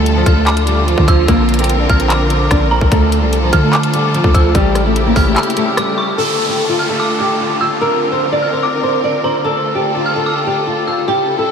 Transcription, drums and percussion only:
0.06 closed hi-hat
0.26 kick, closed hi-hat
0.47 clap, closed hi-hat
0.57 closed hi-hat
0.67 closed hi-hat
0.88 closed hi-hat
0.98 kick
1.08 kick, closed hi-hat
1.28 kick, closed hi-hat
1.49 closed hi-hat
1.54 closed hi-hat
1.59 closed hi-hat
1.64 closed hi-hat
1.70 closed hi-hat
1.89 kick, closed hi-hat
2.00 closed hi-hat
2.10 clap, closed hi-hat
2.30 closed hi-hat
2.51 kick, cross-stick, closed hi-hat
2.81 kick
2.92 kick, closed hi-hat
3.12 closed hi-hat
3.33 closed hi-hat
3.53 kick, closed hi-hat
3.73 clap, closed hi-hat
3.83 closed hi-hat
3.94 closed hi-hat
4.15 closed hi-hat
4.24 kick
4.34 kick, closed hi-hat
4.55 kick, closed hi-hat
4.75 cross-stick, closed hi-hat
4.96 closed hi-hat
5.16 kick, open hi-hat
5.36 clap, closed hi-hat
5.43 closed hi-hat
5.50 closed hi-hat
5.57 closed hi-hat
5.77 cross-stick, closed hi-hat

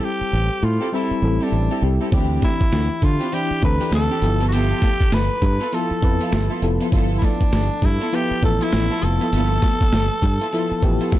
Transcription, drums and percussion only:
2.12 kick, closed hi-hat
2.42 kick, snare, closed hi-hat
2.61 kick, closed hi-hat
2.72 snare, closed hi-hat
3.02 kick, closed hi-hat
3.21 closed hi-hat
3.32 closed hi-hat
3.62 kick, closed hi-hat
3.81 closed hi-hat
3.92 snare, closed hi-hat
4.22 closed hi-hat
4.41 closed hi-hat
4.52 closed hi-hat
4.82 kick, snare, closed hi-hat
5.01 kick, closed hi-hat
5.12 snare, closed hi-hat
5.42 kick, closed hi-hat
5.61 closed hi-hat
5.72 closed hi-hat
6.02 kick, closed hi-hat
6.21 closed hi-hat
6.32 snare, closed hi-hat
6.62 closed hi-hat
6.81 closed hi-hat
6.92 kick, closed hi-hat
7.22 kick, snare, closed hi-hat
7.41 kick, closed hi-hat
7.52 snare, closed hi-hat
7.82 kick, closed hi-hat
8.01 closed hi-hat
8.13 closed hi-hat
8.43 kick, closed hi-hat
8.61 closed hi-hat
8.72 snare, closed hi-hat
9.02 closed hi-hat
9.21 closed hi-hat
9.33 closed hi-hat
9.62 kick, snare, closed hi-hat
9.81 kick, closed hi-hat
9.92 snare, closed hi-hat
10.22 kick, closed hi-hat
10.41 closed hi-hat
10.53 closed hi-hat
10.82 kick, closed hi-hat
11.01 closed hi-hat
11.12 kick, snare

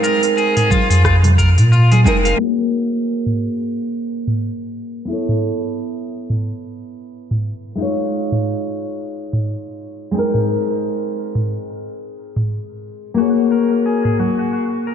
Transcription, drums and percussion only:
0.04 shaker
0.23 open hi-hat, shaker
0.38 shaker
0.57 mid tom, open hi-hat
0.70 kick, high conga, shaker
0.91 open hi-hat, shaker
1.05 kick, cross-stick, shaker
1.23 open hi-hat, high conga, low conga
1.38 kick, shaker
1.58 mid tom, open hi-hat, shaker
1.73 shaker
1.92 open hi-hat, high conga
2.06 shaker
2.25 open hi-hat, shaker
3.26 mid tom
4.27 mid tom
5.29 mid tom
6.30 mid tom
7.31 mid tom
8.32 mid tom
9.33 mid tom
10.34 mid tom
11.35 mid tom
12.36 mid tom
14.05 mid tom
14.20 high conga

